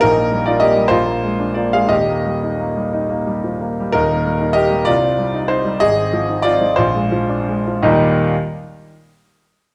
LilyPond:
<<
  \new Staff \with { instrumentName = "Grand piano" } { \time 6/8 \key ees \major \tempo 4. = 62 <ees' bes'>8. <f' d''>16 <g' ees''>8 <f' c''>4 <f' d''>16 <aes' f''>16 | <g' ees''>2~ <g' ees''>8 r8 | <ees' bes'>4 <g' ees''>8 <f' d''>4 <ees' c''>8 | <aes' ees''>4 <f' d''>8 <f' c''>4. |
<ees, bes, g bes ees' g' ees''>8 r2 r8 | }
  \new Staff \with { instrumentName = "Grand piano" } { \clef bass \time 6/8 \key ees \major bes,,16 bes16 g16 ees'16 bes16 g16 bes,,16 bes16 aes16 d'16 bes16 aes16 | <ees,, ees,>16 bes16 g16 ees'16 bes16 g16 ees'16 bes16 g16 f16 bes16 g16 | <ees,, ees,>16 bes16 g16 ees'16 bes16 g16 c,16 c'16 g16 ees'16 c'16 g16 | aes,,16 c'16 f16 ees'16 c'16 f16 bes,,16 aes16 f16 d'16 aes16 f16 |
r2. | }
>>